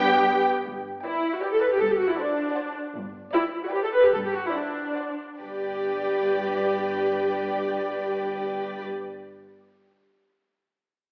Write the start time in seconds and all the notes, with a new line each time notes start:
Already playing: G2 B3 G4 G5
0.65 G1 G2
1.04 E4 B4 D5 G5
1.33 F#4
1.41 G4 B4 D5 G5
1.52 A4
1.61 B4
1.72 G4
1.79 G1 G2 A4
1.90 G4
1.98 F#4
2.10 E4
2.17 D4 C5 D5 F#5
2.56 C5 D5 F#5
2.94 G1 G2
3.32 E4 B4 D5 G5
3.64 F#4
3.72 G4 B4 D5 G5
3.83 A4
3.93 B4
4.04 G4
4.13 G1 G2 A4
4.25 G4
4.34 F#4
4.45 E4
4.53 D4 C5 D5 F#5
4.96 C5 D5 F#5
5.39 G1 G2 G4 B4 D5 G5